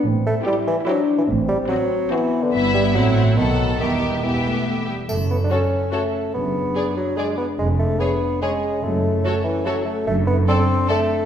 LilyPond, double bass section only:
\new Staff \with { instrumentName = "Double bass section" } { \clef bass \time 3/4 \key e \minor \tempo 4 = 144 a,,4 r2 | a,,4 r2 | g,,4 a,,4 b,,4 | e,,2~ e,,8 r8 |
\key fis \minor fis,,4 r2 | fis,,4 r2 | eis,,4 r2 | fis,,4 r2 |
\key d \mixolydian fis,,4 r2 | }